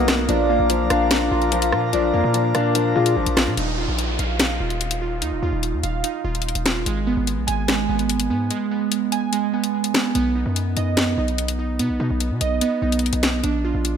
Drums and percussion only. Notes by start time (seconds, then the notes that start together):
0.08 finger snap, cross-stick, snare, closed hi-hat
0.29 closed hi-hat
0.70 closed hi-hat
0.90 cross-stick, closed hi-hat
1.11 finger snap, snare, closed hi-hat
1.42 closed hi-hat
1.52 closed hi-hat
1.62 closed hi-hat
1.72 cross-stick
1.93 closed hi-hat
2.34 closed hi-hat
2.55 cross-stick, closed hi-hat
2.75 closed hi-hat
3.06 closed hi-hat
3.26 closed hi-hat
3.37 finger snap, cross-stick, snare, open hi-hat
3.57 closed hi-hat
3.99 closed hi-hat
4.19 closed hi-hat
4.39 finger snap, snare, closed hi-hat
4.70 closed hi-hat
4.81 closed hi-hat
4.91 closed hi-hat
5.22 closed hi-hat
5.63 closed hi-hat
5.83 closed hi-hat
6.04 closed hi-hat
6.35 closed hi-hat
6.42 closed hi-hat
6.49 closed hi-hat
6.55 closed hi-hat
6.66 finger snap, snare, closed hi-hat
6.86 closed hi-hat
7.27 closed hi-hat
7.48 closed hi-hat
7.68 finger snap, snare, closed hi-hat
7.99 closed hi-hat
8.09 closed hi-hat
8.20 closed hi-hat
8.51 closed hi-hat
8.92 closed hi-hat
9.12 closed hi-hat
9.33 closed hi-hat
9.64 closed hi-hat
9.84 closed hi-hat
9.94 finger snap, snare, open hi-hat
10.15 closed hi-hat
10.56 closed hi-hat
10.77 closed hi-hat
10.97 finger snap, snare, closed hi-hat
11.28 closed hi-hat
11.38 closed hi-hat
11.48 closed hi-hat
11.79 closed hi-hat
12.20 closed hi-hat
12.41 closed hi-hat
12.61 closed hi-hat
12.92 closed hi-hat
12.99 closed hi-hat
13.06 closed hi-hat
13.13 closed hi-hat
13.23 finger snap, snare, closed hi-hat
13.44 closed hi-hat
13.85 closed hi-hat